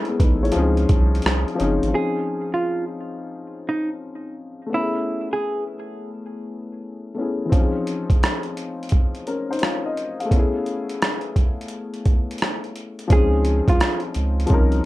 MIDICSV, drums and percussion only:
0, 0, Header, 1, 2, 480
1, 0, Start_track
1, 0, Key_signature, -5, "major"
1, 0, Tempo, 697674
1, 1334, Time_signature, 4, 2, 24, 8
1, 10218, End_track
2, 0, Start_track
2, 0, Title_t, "Drums"
2, 35, Note_on_c, 9, 42, 36
2, 103, Note_off_c, 9, 42, 0
2, 136, Note_on_c, 9, 36, 83
2, 137, Note_on_c, 9, 42, 73
2, 204, Note_off_c, 9, 36, 0
2, 206, Note_off_c, 9, 42, 0
2, 309, Note_on_c, 9, 42, 43
2, 355, Note_off_c, 9, 42, 0
2, 355, Note_on_c, 9, 42, 83
2, 424, Note_off_c, 9, 42, 0
2, 531, Note_on_c, 9, 42, 40
2, 600, Note_off_c, 9, 42, 0
2, 613, Note_on_c, 9, 42, 65
2, 615, Note_on_c, 9, 36, 105
2, 681, Note_off_c, 9, 42, 0
2, 684, Note_off_c, 9, 36, 0
2, 791, Note_on_c, 9, 42, 45
2, 840, Note_off_c, 9, 42, 0
2, 840, Note_on_c, 9, 42, 59
2, 868, Note_on_c, 9, 37, 101
2, 909, Note_off_c, 9, 42, 0
2, 937, Note_off_c, 9, 37, 0
2, 1019, Note_on_c, 9, 42, 29
2, 1088, Note_off_c, 9, 42, 0
2, 1099, Note_on_c, 9, 42, 64
2, 1168, Note_off_c, 9, 42, 0
2, 1259, Note_on_c, 9, 42, 61
2, 1328, Note_off_c, 9, 42, 0
2, 5175, Note_on_c, 9, 36, 101
2, 5178, Note_on_c, 9, 42, 68
2, 5244, Note_off_c, 9, 36, 0
2, 5247, Note_off_c, 9, 42, 0
2, 5415, Note_on_c, 9, 42, 62
2, 5484, Note_off_c, 9, 42, 0
2, 5571, Note_on_c, 9, 36, 87
2, 5575, Note_on_c, 9, 42, 47
2, 5640, Note_off_c, 9, 36, 0
2, 5644, Note_off_c, 9, 42, 0
2, 5663, Note_on_c, 9, 42, 77
2, 5667, Note_on_c, 9, 37, 115
2, 5732, Note_off_c, 9, 42, 0
2, 5736, Note_off_c, 9, 37, 0
2, 5802, Note_on_c, 9, 42, 35
2, 5871, Note_off_c, 9, 42, 0
2, 5897, Note_on_c, 9, 42, 63
2, 5966, Note_off_c, 9, 42, 0
2, 6074, Note_on_c, 9, 42, 41
2, 6118, Note_off_c, 9, 42, 0
2, 6118, Note_on_c, 9, 42, 73
2, 6139, Note_on_c, 9, 36, 83
2, 6187, Note_off_c, 9, 42, 0
2, 6208, Note_off_c, 9, 36, 0
2, 6294, Note_on_c, 9, 42, 37
2, 6362, Note_off_c, 9, 42, 0
2, 6377, Note_on_c, 9, 42, 58
2, 6446, Note_off_c, 9, 42, 0
2, 6555, Note_on_c, 9, 42, 50
2, 6598, Note_off_c, 9, 42, 0
2, 6598, Note_on_c, 9, 42, 66
2, 6626, Note_on_c, 9, 37, 98
2, 6667, Note_off_c, 9, 42, 0
2, 6695, Note_off_c, 9, 37, 0
2, 6862, Note_on_c, 9, 42, 54
2, 6931, Note_off_c, 9, 42, 0
2, 7020, Note_on_c, 9, 42, 50
2, 7089, Note_off_c, 9, 42, 0
2, 7095, Note_on_c, 9, 36, 97
2, 7098, Note_on_c, 9, 42, 71
2, 7164, Note_off_c, 9, 36, 0
2, 7167, Note_off_c, 9, 42, 0
2, 7336, Note_on_c, 9, 42, 55
2, 7405, Note_off_c, 9, 42, 0
2, 7495, Note_on_c, 9, 42, 51
2, 7564, Note_off_c, 9, 42, 0
2, 7581, Note_on_c, 9, 42, 75
2, 7585, Note_on_c, 9, 37, 114
2, 7650, Note_off_c, 9, 42, 0
2, 7654, Note_off_c, 9, 37, 0
2, 7714, Note_on_c, 9, 42, 35
2, 7783, Note_off_c, 9, 42, 0
2, 7815, Note_on_c, 9, 36, 72
2, 7817, Note_on_c, 9, 42, 61
2, 7884, Note_off_c, 9, 36, 0
2, 7886, Note_off_c, 9, 42, 0
2, 7988, Note_on_c, 9, 42, 44
2, 8038, Note_off_c, 9, 42, 0
2, 8038, Note_on_c, 9, 42, 75
2, 8107, Note_off_c, 9, 42, 0
2, 8212, Note_on_c, 9, 42, 37
2, 8281, Note_off_c, 9, 42, 0
2, 8293, Note_on_c, 9, 42, 62
2, 8295, Note_on_c, 9, 36, 89
2, 8362, Note_off_c, 9, 42, 0
2, 8364, Note_off_c, 9, 36, 0
2, 8469, Note_on_c, 9, 42, 50
2, 8518, Note_off_c, 9, 42, 0
2, 8518, Note_on_c, 9, 42, 62
2, 8547, Note_on_c, 9, 37, 95
2, 8587, Note_off_c, 9, 42, 0
2, 8615, Note_off_c, 9, 37, 0
2, 8696, Note_on_c, 9, 42, 28
2, 8765, Note_off_c, 9, 42, 0
2, 8776, Note_on_c, 9, 42, 57
2, 8845, Note_off_c, 9, 42, 0
2, 8936, Note_on_c, 9, 42, 53
2, 9005, Note_off_c, 9, 42, 0
2, 9013, Note_on_c, 9, 42, 76
2, 9014, Note_on_c, 9, 36, 109
2, 9082, Note_off_c, 9, 36, 0
2, 9082, Note_off_c, 9, 42, 0
2, 9251, Note_on_c, 9, 42, 67
2, 9320, Note_off_c, 9, 42, 0
2, 9410, Note_on_c, 9, 36, 99
2, 9413, Note_on_c, 9, 42, 53
2, 9479, Note_off_c, 9, 36, 0
2, 9482, Note_off_c, 9, 42, 0
2, 9497, Note_on_c, 9, 42, 87
2, 9501, Note_on_c, 9, 37, 127
2, 9566, Note_off_c, 9, 42, 0
2, 9570, Note_off_c, 9, 37, 0
2, 9632, Note_on_c, 9, 42, 37
2, 9701, Note_off_c, 9, 42, 0
2, 9731, Note_on_c, 9, 42, 68
2, 9800, Note_off_c, 9, 42, 0
2, 9905, Note_on_c, 9, 42, 47
2, 9955, Note_off_c, 9, 42, 0
2, 9955, Note_on_c, 9, 42, 74
2, 9976, Note_on_c, 9, 36, 88
2, 10023, Note_off_c, 9, 42, 0
2, 10045, Note_off_c, 9, 36, 0
2, 10126, Note_on_c, 9, 42, 38
2, 10195, Note_off_c, 9, 42, 0
2, 10218, End_track
0, 0, End_of_file